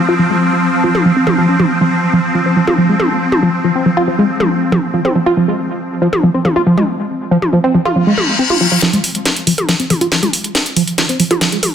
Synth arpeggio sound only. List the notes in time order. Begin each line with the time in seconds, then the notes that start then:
0.09 F4
0.19 F3
0.30 G#3
0.84 F3
1.05 F3
1.16 C4
1.27 F3
1.38 F3
1.48 C#4
1.59 F3
1.81 F3
2.13 F3
2.35 F3
2.46 C4
2.56 F3
2.67 F4
2.78 F3
2.89 G#3
3.43 F3
3.64 F3
3.75 C4
3.86 F3
3.97 F4
4.08 F3
4.19 G#3
4.72 F3
4.94 F3
5.05 C4
5.15 F3
5.26 F4
5.37 F3
5.48 G#3
6.02 F3
6.23 F3
6.34 C4
6.45 F3
6.56 F4
6.67 F3
6.78 G#3
7.31 F3
7.53 F3
7.64 C4
7.74 F3
7.85 F4
7.96 F3
8.07 G#3
8.39 C4
8.50 F4
8.61 F3
8.72 F3
8.82 F3
8.93 G#3
9.47 F3
9.69 F3
9.80 C4
9.90 F3
10.01 F4
10.12 F3
10.23 G#3
10.76 F3
10.98 F3
11.09 C4
11.20 F3
11.31 F4
11.41 F3
11.52 G#3